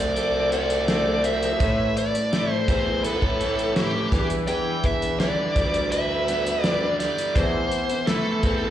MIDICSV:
0, 0, Header, 1, 6, 480
1, 0, Start_track
1, 0, Tempo, 719424
1, 1071, Time_signature, 4, 2, 24, 8
1, 5805, End_track
2, 0, Start_track
2, 0, Title_t, "Lead electric guitar"
2, 0, Program_c, 0, 29
2, 0, Note_on_c, 0, 74, 86
2, 325, Note_off_c, 0, 74, 0
2, 354, Note_on_c, 0, 74, 83
2, 805, Note_off_c, 0, 74, 0
2, 836, Note_on_c, 0, 76, 87
2, 1319, Note_off_c, 0, 76, 0
2, 1321, Note_on_c, 0, 74, 82
2, 1682, Note_off_c, 0, 74, 0
2, 1682, Note_on_c, 0, 72, 82
2, 1792, Note_off_c, 0, 72, 0
2, 1792, Note_on_c, 0, 72, 85
2, 2030, Note_off_c, 0, 72, 0
2, 2033, Note_on_c, 0, 69, 74
2, 2485, Note_off_c, 0, 69, 0
2, 2515, Note_on_c, 0, 67, 77
2, 2847, Note_off_c, 0, 67, 0
2, 2990, Note_on_c, 0, 79, 91
2, 3235, Note_on_c, 0, 76, 76
2, 3237, Note_off_c, 0, 79, 0
2, 3467, Note_off_c, 0, 76, 0
2, 3469, Note_on_c, 0, 74, 78
2, 3946, Note_off_c, 0, 74, 0
2, 3948, Note_on_c, 0, 76, 78
2, 4429, Note_off_c, 0, 76, 0
2, 4429, Note_on_c, 0, 74, 78
2, 4643, Note_off_c, 0, 74, 0
2, 4669, Note_on_c, 0, 74, 84
2, 4906, Note_on_c, 0, 72, 76
2, 4917, Note_off_c, 0, 74, 0
2, 5385, Note_off_c, 0, 72, 0
2, 5388, Note_on_c, 0, 69, 75
2, 5805, Note_off_c, 0, 69, 0
2, 5805, End_track
3, 0, Start_track
3, 0, Title_t, "Twelve-string acoustic guitar"
3, 0, Program_c, 1, 25
3, 0, Note_on_c, 1, 66, 36
3, 0, Note_on_c, 1, 69, 38
3, 1, Note_on_c, 1, 60, 32
3, 215, Note_off_c, 1, 69, 0
3, 223, Note_on_c, 1, 69, 47
3, 224, Note_off_c, 1, 66, 0
3, 232, Note_on_c, 1, 66, 42
3, 236, Note_off_c, 1, 60, 0
3, 244, Note_on_c, 1, 60, 37
3, 346, Note_on_c, 1, 57, 47
3, 347, Note_off_c, 1, 69, 0
3, 349, Note_off_c, 1, 60, 0
3, 351, Note_off_c, 1, 66, 0
3, 357, Note_on_c, 1, 60, 46
3, 364, Note_on_c, 1, 66, 56
3, 368, Note_on_c, 1, 69, 51
3, 585, Note_off_c, 1, 57, 0
3, 588, Note_off_c, 1, 60, 0
3, 588, Note_on_c, 1, 50, 69
3, 593, Note_off_c, 1, 66, 0
3, 593, Note_on_c, 1, 57, 67
3, 596, Note_off_c, 1, 69, 0
3, 596, Note_on_c, 1, 60, 72
3, 601, Note_on_c, 1, 66, 73
3, 604, Note_on_c, 1, 69, 75
3, 694, Note_off_c, 1, 69, 0
3, 702, Note_on_c, 1, 69, 41
3, 705, Note_off_c, 1, 66, 0
3, 710, Note_off_c, 1, 50, 0
3, 712, Note_off_c, 1, 57, 0
3, 713, Note_on_c, 1, 66, 42
3, 714, Note_off_c, 1, 60, 0
3, 724, Note_on_c, 1, 60, 38
3, 937, Note_off_c, 1, 69, 0
3, 945, Note_on_c, 1, 69, 44
3, 952, Note_off_c, 1, 66, 0
3, 957, Note_off_c, 1, 60, 0
3, 961, Note_on_c, 1, 66, 44
3, 971, Note_on_c, 1, 60, 36
3, 1068, Note_off_c, 1, 69, 0
3, 1071, Note_on_c, 1, 45, 63
3, 1072, Note_off_c, 1, 60, 0
3, 1073, Note_on_c, 1, 52, 73
3, 1075, Note_on_c, 1, 57, 68
3, 1076, Note_off_c, 1, 66, 0
3, 1080, Note_on_c, 1, 60, 75
3, 1083, Note_on_c, 1, 64, 68
3, 1088, Note_on_c, 1, 71, 76
3, 1426, Note_off_c, 1, 71, 0
3, 1430, Note_off_c, 1, 45, 0
3, 1431, Note_off_c, 1, 52, 0
3, 1433, Note_off_c, 1, 57, 0
3, 1434, Note_off_c, 1, 64, 0
3, 1434, Note_on_c, 1, 71, 44
3, 1435, Note_off_c, 1, 60, 0
3, 1442, Note_on_c, 1, 64, 39
3, 1451, Note_on_c, 1, 60, 40
3, 1456, Note_on_c, 1, 57, 36
3, 1552, Note_off_c, 1, 71, 0
3, 1554, Note_off_c, 1, 57, 0
3, 1554, Note_on_c, 1, 45, 65
3, 1556, Note_off_c, 1, 64, 0
3, 1557, Note_off_c, 1, 60, 0
3, 1559, Note_on_c, 1, 52, 66
3, 1562, Note_on_c, 1, 57, 71
3, 1565, Note_on_c, 1, 60, 68
3, 1566, Note_on_c, 1, 64, 69
3, 1572, Note_on_c, 1, 71, 71
3, 1781, Note_off_c, 1, 57, 0
3, 1789, Note_on_c, 1, 57, 53
3, 1792, Note_off_c, 1, 45, 0
3, 1793, Note_off_c, 1, 60, 0
3, 1795, Note_off_c, 1, 52, 0
3, 1798, Note_off_c, 1, 64, 0
3, 1801, Note_off_c, 1, 71, 0
3, 1801, Note_on_c, 1, 60, 57
3, 1806, Note_on_c, 1, 64, 55
3, 1811, Note_on_c, 1, 71, 57
3, 1908, Note_off_c, 1, 71, 0
3, 1910, Note_off_c, 1, 57, 0
3, 1915, Note_off_c, 1, 64, 0
3, 1916, Note_off_c, 1, 60, 0
3, 1916, Note_on_c, 1, 71, 43
3, 1923, Note_on_c, 1, 64, 38
3, 1930, Note_on_c, 1, 60, 36
3, 1937, Note_on_c, 1, 57, 34
3, 2146, Note_off_c, 1, 71, 0
3, 2154, Note_on_c, 1, 71, 42
3, 2157, Note_off_c, 1, 64, 0
3, 2160, Note_off_c, 1, 60, 0
3, 2163, Note_on_c, 1, 64, 40
3, 2164, Note_off_c, 1, 57, 0
3, 2172, Note_on_c, 1, 60, 42
3, 2178, Note_on_c, 1, 57, 38
3, 2262, Note_off_c, 1, 57, 0
3, 2270, Note_on_c, 1, 57, 51
3, 2272, Note_off_c, 1, 60, 0
3, 2272, Note_off_c, 1, 71, 0
3, 2277, Note_off_c, 1, 64, 0
3, 2280, Note_on_c, 1, 60, 54
3, 2286, Note_on_c, 1, 64, 54
3, 2295, Note_on_c, 1, 71, 57
3, 2510, Note_off_c, 1, 57, 0
3, 2514, Note_on_c, 1, 45, 72
3, 2515, Note_off_c, 1, 60, 0
3, 2518, Note_off_c, 1, 64, 0
3, 2520, Note_on_c, 1, 52, 79
3, 2521, Note_on_c, 1, 57, 71
3, 2522, Note_off_c, 1, 71, 0
3, 2523, Note_on_c, 1, 60, 71
3, 2527, Note_on_c, 1, 64, 80
3, 2530, Note_on_c, 1, 71, 88
3, 2632, Note_off_c, 1, 45, 0
3, 2633, Note_off_c, 1, 71, 0
3, 2635, Note_off_c, 1, 52, 0
3, 2635, Note_off_c, 1, 57, 0
3, 2636, Note_off_c, 1, 60, 0
3, 2638, Note_off_c, 1, 64, 0
3, 2641, Note_on_c, 1, 71, 44
3, 2650, Note_on_c, 1, 64, 43
3, 2655, Note_on_c, 1, 60, 41
3, 2660, Note_on_c, 1, 57, 38
3, 2755, Note_off_c, 1, 71, 0
3, 2760, Note_off_c, 1, 64, 0
3, 2761, Note_on_c, 1, 52, 65
3, 2762, Note_off_c, 1, 57, 0
3, 2762, Note_off_c, 1, 60, 0
3, 2765, Note_on_c, 1, 55, 64
3, 2767, Note_on_c, 1, 62, 70
3, 2771, Note_on_c, 1, 64, 69
3, 2776, Note_on_c, 1, 71, 77
3, 3350, Note_off_c, 1, 71, 0
3, 3353, Note_on_c, 1, 71, 48
3, 3357, Note_off_c, 1, 55, 0
3, 3358, Note_off_c, 1, 62, 0
3, 3362, Note_off_c, 1, 64, 0
3, 3365, Note_on_c, 1, 64, 39
3, 3374, Note_on_c, 1, 62, 38
3, 3394, Note_off_c, 1, 52, 0
3, 3471, Note_off_c, 1, 71, 0
3, 3473, Note_on_c, 1, 52, 68
3, 3474, Note_off_c, 1, 62, 0
3, 3478, Note_off_c, 1, 64, 0
3, 3479, Note_on_c, 1, 55, 65
3, 3482, Note_on_c, 1, 62, 64
3, 3486, Note_on_c, 1, 64, 71
3, 3490, Note_on_c, 1, 71, 73
3, 3701, Note_off_c, 1, 55, 0
3, 3709, Note_on_c, 1, 55, 48
3, 3712, Note_off_c, 1, 52, 0
3, 3713, Note_off_c, 1, 62, 0
3, 3718, Note_off_c, 1, 64, 0
3, 3720, Note_off_c, 1, 71, 0
3, 3721, Note_on_c, 1, 62, 58
3, 3726, Note_on_c, 1, 64, 56
3, 3734, Note_on_c, 1, 71, 56
3, 4063, Note_off_c, 1, 71, 0
3, 4069, Note_off_c, 1, 55, 0
3, 4071, Note_on_c, 1, 71, 44
3, 4075, Note_off_c, 1, 64, 0
3, 4076, Note_off_c, 1, 62, 0
3, 4083, Note_on_c, 1, 64, 38
3, 4094, Note_on_c, 1, 62, 35
3, 4190, Note_off_c, 1, 71, 0
3, 4191, Note_off_c, 1, 62, 0
3, 4192, Note_on_c, 1, 55, 50
3, 4197, Note_off_c, 1, 64, 0
3, 4199, Note_on_c, 1, 62, 50
3, 4206, Note_on_c, 1, 64, 55
3, 4215, Note_on_c, 1, 71, 51
3, 4428, Note_off_c, 1, 55, 0
3, 4430, Note_off_c, 1, 62, 0
3, 4432, Note_on_c, 1, 52, 76
3, 4433, Note_off_c, 1, 64, 0
3, 4436, Note_on_c, 1, 55, 72
3, 4437, Note_off_c, 1, 71, 0
3, 4438, Note_on_c, 1, 62, 69
3, 4441, Note_on_c, 1, 64, 71
3, 4445, Note_on_c, 1, 71, 81
3, 4532, Note_off_c, 1, 71, 0
3, 4540, Note_on_c, 1, 71, 44
3, 4547, Note_off_c, 1, 64, 0
3, 4551, Note_off_c, 1, 52, 0
3, 4553, Note_off_c, 1, 55, 0
3, 4554, Note_off_c, 1, 62, 0
3, 4555, Note_on_c, 1, 64, 37
3, 4561, Note_on_c, 1, 62, 38
3, 4772, Note_off_c, 1, 71, 0
3, 4780, Note_on_c, 1, 71, 43
3, 4784, Note_off_c, 1, 64, 0
3, 4793, Note_on_c, 1, 64, 43
3, 4796, Note_off_c, 1, 62, 0
3, 4802, Note_on_c, 1, 62, 37
3, 4904, Note_on_c, 1, 52, 61
3, 4905, Note_off_c, 1, 71, 0
3, 4906, Note_off_c, 1, 62, 0
3, 4906, Note_off_c, 1, 64, 0
3, 4907, Note_on_c, 1, 57, 68
3, 4909, Note_on_c, 1, 60, 67
3, 4914, Note_on_c, 1, 64, 71
3, 5266, Note_on_c, 1, 71, 45
3, 5267, Note_off_c, 1, 52, 0
3, 5269, Note_off_c, 1, 57, 0
3, 5269, Note_off_c, 1, 60, 0
3, 5269, Note_off_c, 1, 64, 0
3, 5277, Note_on_c, 1, 64, 40
3, 5288, Note_on_c, 1, 60, 38
3, 5388, Note_off_c, 1, 60, 0
3, 5388, Note_off_c, 1, 71, 0
3, 5389, Note_off_c, 1, 64, 0
3, 5389, Note_on_c, 1, 52, 61
3, 5391, Note_on_c, 1, 57, 64
3, 5396, Note_on_c, 1, 60, 64
3, 5397, Note_on_c, 1, 64, 71
3, 5401, Note_on_c, 1, 71, 78
3, 5621, Note_off_c, 1, 57, 0
3, 5629, Note_off_c, 1, 52, 0
3, 5629, Note_off_c, 1, 60, 0
3, 5629, Note_on_c, 1, 57, 54
3, 5634, Note_off_c, 1, 64, 0
3, 5636, Note_off_c, 1, 71, 0
3, 5637, Note_on_c, 1, 60, 51
3, 5644, Note_on_c, 1, 64, 62
3, 5652, Note_on_c, 1, 71, 51
3, 5737, Note_off_c, 1, 71, 0
3, 5745, Note_on_c, 1, 71, 38
3, 5749, Note_off_c, 1, 57, 0
3, 5751, Note_off_c, 1, 64, 0
3, 5754, Note_off_c, 1, 60, 0
3, 5759, Note_on_c, 1, 64, 40
3, 5768, Note_on_c, 1, 60, 35
3, 5805, Note_off_c, 1, 60, 0
3, 5805, Note_off_c, 1, 64, 0
3, 5805, Note_off_c, 1, 71, 0
3, 5805, End_track
4, 0, Start_track
4, 0, Title_t, "Overdriven electric guitar"
4, 0, Program_c, 2, 29
4, 0, Note_on_c, 2, 50, 56
4, 0, Note_on_c, 2, 57, 60
4, 0, Note_on_c, 2, 60, 57
4, 106, Note_on_c, 2, 69, 67
4, 348, Note_on_c, 2, 66, 57
4, 350, Note_off_c, 2, 50, 0
4, 581, Note_off_c, 2, 57, 0
4, 589, Note_on_c, 2, 57, 58
4, 814, Note_off_c, 2, 60, 0
4, 822, Note_on_c, 2, 60, 64
4, 1064, Note_on_c, 2, 45, 56
4, 1066, Note_off_c, 2, 60, 0
4, 1068, Note_off_c, 2, 69, 0
4, 1069, Note_off_c, 2, 66, 0
4, 1070, Note_off_c, 2, 57, 0
4, 1551, Note_on_c, 2, 57, 59
4, 1788, Note_on_c, 2, 60, 62
4, 2033, Note_on_c, 2, 71, 66
4, 2267, Note_off_c, 2, 45, 0
4, 2271, Note_on_c, 2, 64, 60
4, 2505, Note_off_c, 2, 57, 0
4, 2513, Note_on_c, 2, 57, 63
4, 2749, Note_off_c, 2, 60, 0
4, 2751, Note_off_c, 2, 57, 0
4, 2762, Note_on_c, 2, 52, 64
4, 2994, Note_off_c, 2, 52, 0
4, 2997, Note_on_c, 2, 52, 62
4, 3471, Note_on_c, 2, 50, 66
4, 3491, Note_off_c, 2, 64, 0
4, 3714, Note_on_c, 2, 55, 56
4, 3946, Note_off_c, 2, 71, 0
4, 3949, Note_on_c, 2, 71, 66
4, 4184, Note_on_c, 2, 59, 55
4, 4193, Note_off_c, 2, 52, 0
4, 4421, Note_off_c, 2, 50, 0
4, 4429, Note_on_c, 2, 50, 67
4, 4659, Note_off_c, 2, 55, 0
4, 4667, Note_on_c, 2, 55, 59
4, 4904, Note_on_c, 2, 40, 60
4, 4907, Note_off_c, 2, 59, 0
4, 4909, Note_off_c, 2, 55, 0
4, 4910, Note_off_c, 2, 50, 0
4, 4910, Note_off_c, 2, 71, 0
4, 5385, Note_on_c, 2, 57, 59
4, 5629, Note_on_c, 2, 60, 57
4, 5805, Note_off_c, 2, 40, 0
4, 5805, Note_off_c, 2, 57, 0
4, 5805, Note_off_c, 2, 60, 0
4, 5805, End_track
5, 0, Start_track
5, 0, Title_t, "Bassoon"
5, 0, Program_c, 3, 70
5, 0, Note_on_c, 3, 36, 76
5, 1070, Note_on_c, 3, 45, 89
5, 1080, Note_off_c, 3, 36, 0
5, 1253, Note_off_c, 3, 45, 0
5, 1790, Note_on_c, 3, 40, 71
5, 2149, Note_on_c, 3, 45, 75
5, 2159, Note_off_c, 3, 40, 0
5, 2607, Note_off_c, 3, 45, 0
5, 2749, Note_on_c, 3, 40, 68
5, 2932, Note_off_c, 3, 40, 0
5, 2991, Note_on_c, 3, 40, 86
5, 3173, Note_off_c, 3, 40, 0
5, 3229, Note_on_c, 3, 40, 82
5, 3595, Note_off_c, 3, 40, 0
5, 3709, Note_on_c, 3, 38, 67
5, 4728, Note_off_c, 3, 38, 0
5, 4909, Note_on_c, 3, 40, 93
5, 5093, Note_off_c, 3, 40, 0
5, 5627, Note_on_c, 3, 40, 59
5, 5805, Note_off_c, 3, 40, 0
5, 5805, End_track
6, 0, Start_track
6, 0, Title_t, "Drums"
6, 109, Note_on_c, 9, 42, 54
6, 176, Note_off_c, 9, 42, 0
6, 347, Note_on_c, 9, 42, 51
6, 414, Note_off_c, 9, 42, 0
6, 467, Note_on_c, 9, 42, 50
6, 534, Note_off_c, 9, 42, 0
6, 588, Note_on_c, 9, 42, 54
6, 589, Note_on_c, 9, 38, 88
6, 655, Note_off_c, 9, 42, 0
6, 656, Note_off_c, 9, 38, 0
6, 827, Note_on_c, 9, 42, 62
6, 894, Note_off_c, 9, 42, 0
6, 952, Note_on_c, 9, 42, 55
6, 1018, Note_off_c, 9, 42, 0
6, 1069, Note_on_c, 9, 42, 61
6, 1070, Note_on_c, 9, 36, 92
6, 1136, Note_off_c, 9, 36, 0
6, 1136, Note_off_c, 9, 42, 0
6, 1313, Note_on_c, 9, 42, 53
6, 1380, Note_off_c, 9, 42, 0
6, 1434, Note_on_c, 9, 42, 57
6, 1501, Note_off_c, 9, 42, 0
6, 1553, Note_on_c, 9, 42, 49
6, 1555, Note_on_c, 9, 38, 81
6, 1620, Note_off_c, 9, 42, 0
6, 1621, Note_off_c, 9, 38, 0
6, 1789, Note_on_c, 9, 36, 81
6, 1790, Note_on_c, 9, 42, 56
6, 1856, Note_off_c, 9, 36, 0
6, 1857, Note_off_c, 9, 42, 0
6, 2031, Note_on_c, 9, 42, 52
6, 2098, Note_off_c, 9, 42, 0
6, 2150, Note_on_c, 9, 36, 68
6, 2217, Note_off_c, 9, 36, 0
6, 2273, Note_on_c, 9, 42, 53
6, 2339, Note_off_c, 9, 42, 0
6, 2394, Note_on_c, 9, 42, 47
6, 2461, Note_off_c, 9, 42, 0
6, 2509, Note_on_c, 9, 42, 44
6, 2510, Note_on_c, 9, 38, 91
6, 2576, Note_off_c, 9, 42, 0
6, 2577, Note_off_c, 9, 38, 0
6, 2749, Note_on_c, 9, 36, 94
6, 2753, Note_on_c, 9, 42, 55
6, 2816, Note_off_c, 9, 36, 0
6, 2820, Note_off_c, 9, 42, 0
6, 2869, Note_on_c, 9, 42, 49
6, 2936, Note_off_c, 9, 42, 0
6, 2986, Note_on_c, 9, 42, 53
6, 3053, Note_off_c, 9, 42, 0
6, 3227, Note_on_c, 9, 42, 50
6, 3229, Note_on_c, 9, 36, 68
6, 3293, Note_off_c, 9, 42, 0
6, 3295, Note_off_c, 9, 36, 0
6, 3351, Note_on_c, 9, 42, 52
6, 3418, Note_off_c, 9, 42, 0
6, 3468, Note_on_c, 9, 42, 51
6, 3469, Note_on_c, 9, 38, 96
6, 3535, Note_off_c, 9, 42, 0
6, 3536, Note_off_c, 9, 38, 0
6, 3709, Note_on_c, 9, 36, 72
6, 3709, Note_on_c, 9, 42, 53
6, 3775, Note_off_c, 9, 42, 0
6, 3776, Note_off_c, 9, 36, 0
6, 3830, Note_on_c, 9, 42, 55
6, 3896, Note_off_c, 9, 42, 0
6, 3949, Note_on_c, 9, 42, 57
6, 4016, Note_off_c, 9, 42, 0
6, 4191, Note_on_c, 9, 42, 55
6, 4258, Note_off_c, 9, 42, 0
6, 4313, Note_on_c, 9, 42, 55
6, 4380, Note_off_c, 9, 42, 0
6, 4428, Note_on_c, 9, 42, 49
6, 4430, Note_on_c, 9, 38, 90
6, 4495, Note_off_c, 9, 42, 0
6, 4497, Note_off_c, 9, 38, 0
6, 4671, Note_on_c, 9, 42, 60
6, 4673, Note_on_c, 9, 38, 30
6, 4738, Note_off_c, 9, 42, 0
6, 4739, Note_off_c, 9, 38, 0
6, 4793, Note_on_c, 9, 42, 59
6, 4859, Note_off_c, 9, 42, 0
6, 4909, Note_on_c, 9, 36, 106
6, 4911, Note_on_c, 9, 42, 58
6, 4976, Note_off_c, 9, 36, 0
6, 4977, Note_off_c, 9, 42, 0
6, 5148, Note_on_c, 9, 42, 49
6, 5214, Note_off_c, 9, 42, 0
6, 5267, Note_on_c, 9, 42, 51
6, 5334, Note_off_c, 9, 42, 0
6, 5386, Note_on_c, 9, 42, 52
6, 5387, Note_on_c, 9, 38, 87
6, 5453, Note_off_c, 9, 42, 0
6, 5454, Note_off_c, 9, 38, 0
6, 5625, Note_on_c, 9, 42, 55
6, 5627, Note_on_c, 9, 36, 76
6, 5691, Note_off_c, 9, 42, 0
6, 5694, Note_off_c, 9, 36, 0
6, 5805, End_track
0, 0, End_of_file